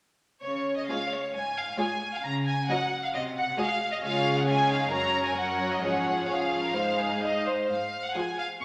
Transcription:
0.41 0.82 C#3 soft
0.41 0.74 C#5 soft
0.76 0.88 D#5 soft
0.87 0.97 G#3 soft
0.87 0.97 F4 soft
0.87 0.98 G#4 soft
0.87 0.98 C#5 soft
0.87 1.10 F5 soft
1.10 1.33 C#5 soft
1.33 1.70 G#2 soft
1.33 1.56 G#5 medium
1.57 1.79 F5 soft
1.77 1.85 G#3 soft
1.77 1.85 F4 soft
1.77 1.86 G#4 soft
1.77 1.85 C#5 soft
1.77 2.12 G#5 soft
2.13 2.24 F5 soft
2.23 2.61 C#3 soft
2.23 2.32 A#5 medium
2.46 2.68 G#5 soft
2.69 2.77 F#3 soft
2.69 2.77 F#4 soft
2.69 2.78 A#4 soft
2.69 2.77 D#5 soft
2.69 3.02 F#5 medium
3.04 3.08 F5 soft
3.13 3.50 C3 soft
3.13 3.23 D#5 medium
3.36 3.57 F#5 soft
3.57 3.65 G#3 soft
3.57 3.65 F#4 soft
3.57 3.66 G#4 soft
3.57 3.65 D#5 soft
3.57 3.90 F5 medium
3.91 3.96 D#5 soft
4.01 4.87 C#3 soft
4.01 4.44 G#3 soft
4.01 4.44 F4 soft
4.01 4.44 G#4 soft
4.01 4.44 C#5 soft
4.01 4.36 F5 medium
4.37 4.48 F#5 soft
4.46 4.90 G#3 soft
4.46 4.55 F4 soft
4.46 4.90 G#4 soft
4.46 4.89 C#5 soft
4.46 4.69 G#5 medium
4.68 4.90 D#4 soft
4.68 4.92 F5 medium
4.90 5.82 F#2 soft
4.90 5.35 F#3 soft
4.90 5.35 C#4 soft
4.90 5.34 A#4 soft
4.90 5.34 C#5 soft
4.90 5.24 A#5 medium
5.24 5.36 G#5 medium
5.35 5.81 F#3 soft
5.35 5.80 C#4 soft
5.35 5.80 A#4 soft
5.35 5.80 C#5 soft
5.35 5.69 F#5 soft
5.72 5.83 D#5 soft
5.81 6.73 G#2 soft
5.81 6.27 F3 soft
5.81 6.27 C#4 soft
5.81 6.27 G#4 soft
5.81 6.28 C#5 soft
5.81 6.29 F#5 soft
6.28 6.74 F3 soft
6.28 6.74 C#4 soft
6.28 6.61 G#4 soft
6.28 7.46 F5 soft
6.63 6.75 A#4 soft
6.74 7.47 G#2 soft
6.74 7.49 G#3 soft
6.74 7.49 D#4 soft
6.74 6.99 C5 soft
6.99 7.23 G#4 soft
7.24 7.47 D#5 soft
7.46 7.70 C5 soft
7.69 8.06 G#2 soft
7.69 8.03 F5 soft
8.05 8.16 F#5 soft
8.15 8.50 F3 soft
8.15 8.50 F4 soft
8.15 8.50 G#4 soft
8.15 8.50 C5 soft
8.15 8.39 G#5 soft
8.39 8.47 F5 soft
8.61 8.65 A#2 soft
8.61 8.65 C#6 medium

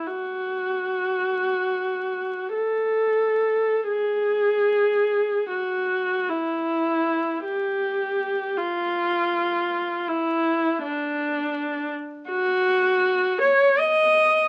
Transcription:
0.07 2.55 F#4 soft
2.55 3.84 A4 soft
3.88 5.49 G#4 medium
5.50 6.28 F#4 medium
6.28 7.43 E4 medium
7.44 8.55 G4 medium
8.57 10.07 F4 medium
10.08 10.82 E4 medium
10.83 11.90 D4 medium
12.30 13.37 F#4 medium
13.41 13.79 C#5 medium
13.78 14.48 D#5 medium

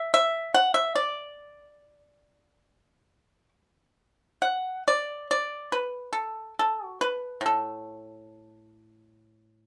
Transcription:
0.00 0.13 E5 loud
0.14 0.52 E5 loud
0.54 0.74 F#5 medium
0.74 0.94 E5 medium
0.95 3.49 D5 medium
4.42 4.83 F#5 medium
4.88 5.27 D5 medium
5.31 5.70 D5 medium
5.72 6.12 B4 medium
6.13 6.53 A4 medium
6.59 6.85 A4 medium
6.85 6.98 F#4 medium
7.01 7.40 B4 medium
7.41 9.66 A2 soft
7.46 9.66 A4 medium

